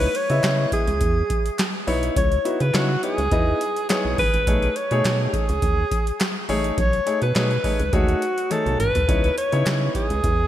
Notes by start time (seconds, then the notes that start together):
Already playing: B4
0.01 closed hi-hat
0.15 C#5, closed hi-hat
0.30 C#3 B3 E4 D#5 E5, closed hi-hat
0.43 C#3, snare, clap, closed hi-hat
0.72 G#4, kick, closed hi-hat
0.87 C#2, closed hi-hat
1.01 E2, kick, closed hi-hat
1.30 kick, closed hi-hat
1.46 closed hi-hat
1.58 snare, clap, closed hi-hat
1.87 B1 B3 D#4 E4 C#5, open hi-hat
2.03 closed hi-hat
2.16 C#2 C#5, kick, closed hi-hat
2.32 closed hi-hat
2.45 B3 D#4 E4 F#4, closed hi-hat
2.60 C#3 B4, closed hi-hat
2.74 C#3 B3 D#4 E4 F#4 C#5, snare, clap, closed hi-hat
3.03 B3 D#4 E4 G#4 C#5, closed hi-hat
3.18 C#2, closed hi-hat
3.31 E2 B3 D#4 E4 D#5, kick, closed hi-hat
3.61 closed hi-hat
3.76 closed hi-hat
3.89 B3 D#4 E4 G#4 C#5, snare, clap, closed hi-hat
4.05 B1
4.18 G#1 B4, kick, open hi-hat
4.34 A1, closed hi-hat
4.47 B1 A3 D#4 G#4 C#5, kick, closed hi-hat
4.62 closed hi-hat
4.76 C#5, closed hi-hat
4.91 B2 A3 D#4 G#4 C#5, closed hi-hat
5.05 B2, snare, clap, closed hi-hat
5.28 G4
5.33 G#4, kick, closed hi-hat
5.49 C#2, closed hi-hat
5.62 D#2, kick, closed hi-hat
5.91 kick, closed hi-hat
6.07 closed hi-hat
6.20 snare, clap, closed hi-hat
6.49 A1 A3 D#4 G#4 C#5, open hi-hat
6.64 closed hi-hat
6.78 B1 C#5, kick, closed hi-hat
6.93 closed hi-hat
7.06 A3 D#4 G#4 C#5, closed hi-hat
7.22 B2 B4, closed hi-hat
7.35 B2 A3 D#4 G#4 B4 C#5, snare, clap, closed hi-hat
7.51 closed hi-hat
7.64 A3 D#4 G#4 C#5, kick, open hi-hat
7.79 C#2, closed hi-hat
7.93 D#2 A3 D#4 F#4 G#4 C#5, kick, closed hi-hat
8.08 closed hi-hat
8.22 closed hi-hat
8.38 closed hi-hat
8.50 A3 D#4 G#4 A4 C#5, closed hi-hat, high tom
8.66 B1, closed hi-hat, mid tom
8.80 A1 B4, closed hi-hat, mid tom
8.95 B1, closed hi-hat, floor tom
9.08 C#2 B3 D#4 E4 C#5, kick, closed hi-hat
9.24 closed hi-hat
9.38 C#5, closed hi-hat
9.52 C#3 B3 D#4 E4 C#5, closed hi-hat
9.66 C#3, snare, clap, closed hi-hat
9.95 G#4, kick, closed hi-hat
10.10 C#2, closed hi-hat
10.24 E2, kick, closed hi-hat